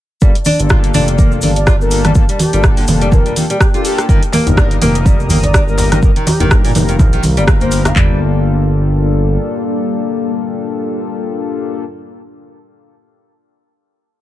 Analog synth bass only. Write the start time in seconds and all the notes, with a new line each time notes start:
0.22 G1
0.60 G1
0.94 F1
1.43 G1
2.15 G1
2.53 G1
2.88 F1
4.09 G1
4.47 G1
4.82 F1
5.30 G1
6.03 G1
6.41 G1
6.75 F1
6.99 A#1
7.24 C2
7.37 G1
7.96 G1